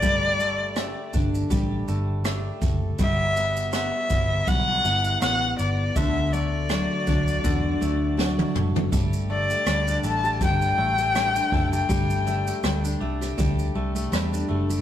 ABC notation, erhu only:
X:1
M:4/4
L:1/16
Q:"Swing 16ths" 1/4=81
K:G
V:1 name="Erhu"
d6 z8 z2 | e4 e4 f4 f2 d2 | e2 d12 z2 | z2 d4 a2 g6- g g- |
g4- g z8 z3 |]